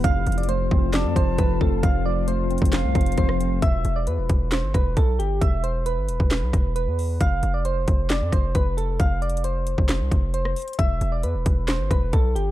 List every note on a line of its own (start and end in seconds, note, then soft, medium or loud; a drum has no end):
0.04 0.26 F1 loud
0.04 0.93 F2 loud
0.04 3.59 F3 medium
0.04 3.59 F4 medium
0.04 3.59 A4 medium
0.04 3.59 C5 medium
0.04 0.36 F5 loud
0.04 kick loud
0.04 closed hi-hat medium
0.26 0.70 F1 loud
0.26 1.15 F3 medium
0.26 closed hi-hat medium
0.32 closed hi-hat medium
0.38 0.48 D5 medium
0.38 closed hi-hat medium
0.43 closed hi-hat medium
0.48 1.60 A3 medium
0.48 0.91 C5 medium
0.48 closed hi-hat medium
0.71 1.06 F1 loud
0.71 1.59 C4 loud
0.71 kick loud
0.94 1.37 F2 medium
0.94 1.15 D5 medium
0.94 1.79 A5 medium
0.94 snare loud
0.94 clap loud
0.94 closed hi-hat medium
1.05 1.16 F2 loud
1.16 1.38 F1 loud
1.16 2.05 F3 medium
1.16 1.37 C5 medium
1.16 kick loud
1.16 closed hi-hat medium
1.38 1.60 F1 loud
1.38 1.82 F2 medium
1.38 1.60 B4 medium
1.38 kick medium
1.38 closed hi-hat medium
1.61 1.82 F1 loud
1.61 2.49 C4 medium
1.61 1.82 A4 medium
1.61 kick medium
1.83 2.58 F1 loud
1.83 2.72 F2 medium
1.83 2.04 F5 medium
1.83 kick loud
1.83 closed hi-hat medium
2.06 2.94 F3 medium
2.06 2.27 D5 medium
2.28 3.40 A3 medium
2.28 3.13 C5 medium
2.28 closed hi-hat medium
2.50 3.39 C4 loud
2.50 closed hi-hat soft
2.58 2.86 F1 loud
2.58 kick medium
2.58 closed hi-hat medium
2.65 closed hi-hat medium
2.73 3.17 F2 medium
2.73 3.58 F5 loud
2.73 snare loud
2.73 clap loud
2.73 closed hi-hat medium
2.84 2.95 C2 loud
2.95 3.17 F1 loud
2.95 3.62 F3 medium
2.95 kick loud
2.95 closed hi-hat medium
3.01 closed hi-hat medium
3.06 closed hi-hat medium
3.12 closed hi-hat medium
3.17 3.61 F1 loud
3.17 3.62 F2 medium
3.17 3.60 C5 medium
3.17 kick medium
3.17 closed hi-hat medium
3.29 cross-stick loud
3.40 3.62 C4 medium
3.40 closed hi-hat medium
3.62 3.84 E1 loud
3.62 3.94 E5 loud
3.62 kick loud
3.62 closed hi-hat medium
3.85 4.09 E1 loud
3.85 closed hi-hat medium
3.96 4.07 D5 medium
4.07 4.20 E2 loud
4.07 4.49 B4 medium
4.07 closed hi-hat medium
4.18 4.29 E1 loud
4.29 4.65 E1 loud
4.29 kick loud
4.29 closed hi-hat medium
4.52 4.73 C5 medium
4.52 snare loud
4.52 clap loud
4.52 closed hi-hat medium
4.63 4.74 G1 medium
4.74 4.96 E1 loud
4.74 4.96 B4 medium
4.74 kick loud
4.74 cross-stick medium
4.74 closed hi-hat medium
4.97 5.21 B1 loud
4.97 5.18 A4 medium
4.97 kick medium
4.97 closed hi-hat medium
5.19 5.40 G1 loud
5.19 5.40 G4 medium
5.19 closed hi-hat medium
5.41 5.99 E1 loud
5.41 5.63 E5 medium
5.41 kick loud
5.41 closed hi-hat medium
5.64 5.85 C5 medium
5.64 closed hi-hat medium
5.86 6.72 B4 medium
5.86 closed hi-hat medium
5.97 6.10 G1 loud
6.09 6.19 E1 loud
6.09 closed hi-hat medium
6.20 6.44 E1 loud
6.20 kick medium
6.31 snare loud
6.31 clap loud
6.31 closed hi-hat medium
6.42 6.53 B1 loud
6.53 6.88 E1 loud
6.53 kick loud
6.53 cross-stick medium
6.53 closed hi-hat medium
6.76 7.18 B4 medium
6.76 closed hi-hat medium
6.87 7.19 E2 medium
6.99 open hi-hat medium
7.21 7.42 F1 loud
7.21 7.52 F5 loud
7.21 kick loud
7.21 closed hi-hat medium
7.43 7.86 F1 loud
7.43 closed hi-hat medium
7.54 7.65 D5 medium
7.65 8.07 C5 medium
7.65 closed hi-hat medium
7.88 8.23 F1 loud
7.88 kick loud
7.88 closed hi-hat medium
8.10 8.31 D5 medium
8.10 snare loud
8.10 clap loud
8.10 closed hi-hat medium
8.21 8.32 F2 loud
8.32 8.54 F1 loud
8.32 8.54 C5 medium
8.32 kick loud
8.32 cross-stick medium
8.32 closed hi-hat medium
8.55 8.98 F1 loud
8.55 8.76 B4 medium
8.55 kick medium
8.55 closed hi-hat medium
8.77 8.99 A4 medium
8.77 closed hi-hat medium
9.00 9.75 F1 loud
9.00 9.21 F5 medium
9.00 kick loud
9.00 closed hi-hat medium
9.22 9.43 D5 medium
9.22 closed hi-hat soft
9.29 closed hi-hat medium
9.37 closed hi-hat medium
9.44 10.30 C5 medium
9.44 closed hi-hat medium
9.67 closed hi-hat medium
9.78 10.02 F1 loud
9.78 kick medium
9.89 snare loud
9.89 clap loud
9.89 closed hi-hat medium
10.00 10.11 C2 loud
10.11 10.55 F1 loud
10.11 kick loud
10.11 closed hi-hat medium
10.34 10.76 C5 medium
10.34 closed hi-hat medium
10.45 cross-stick loud
10.56 closed hi-hat medium
10.56 open hi-hat medium
10.62 closed hi-hat medium
10.68 closed hi-hat medium
10.73 closed hi-hat medium
10.79 11.00 E1 loud
10.79 11.10 E5 loud
10.79 kick loud
10.79 closed hi-hat medium
11.01 11.25 E1 loud
11.01 closed hi-hat medium
11.12 11.23 D5 medium
11.23 11.36 E2 loud
11.23 11.66 B4 medium
11.23 closed hi-hat medium
11.35 11.45 E1 loud
11.46 11.81 E1 loud
11.46 kick loud
11.46 closed hi-hat medium
11.68 11.89 C5 medium
11.68 snare loud
11.68 clap medium
11.68 closed hi-hat medium
11.80 11.90 G1 loud
11.91 12.12 E1 loud
11.91 12.12 B4 medium
11.91 kick loud
11.91 cross-stick medium
11.91 closed hi-hat medium
12.13 12.37 B1 loud
12.13 12.34 A4 medium
12.13 kick medium
12.13 closed hi-hat medium
12.35 12.51 G1 loud
12.35 12.51 G4 medium
12.35 closed hi-hat medium